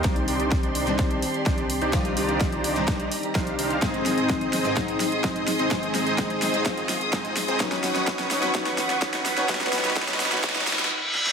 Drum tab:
HH |x-x-o-x-x-x-o-x-x-x-o-x-x-x-o-x-|x-x-o-x-x-x-o-x-x-x-o-x-x-x-o-x-|x-x-o-x-x-x-o-x-x-x-o-x-x-x-o-x-|x-x-o-x-x-x-o-x-x-x-o-x-x-x-o-x-|
SD |o-------o-------o-------o-------|o-------o-------o-------o-------|o---o---o---o---o---o---o---o---|o---o---o---o---o---o---o---o---|
BD |o-------o-------o-------o-------|o-------o-------o-------o-------|o-------o-------o-------o-------|o-------o-------o-------o-------|

HH |x-x-o-x-x-x-o-x-x-x-o-x-x-x-o-x-|x-x-o-x-x-x-o-x-x-x-o-x---------|
SD |o-o-o-o-o-o-o-o-o-o-o-o-o-o-o-o-|oooooooooooooooooooooooo----o-o-|
BD |o-------o-------o-------o-------|o-------o-------o---------------|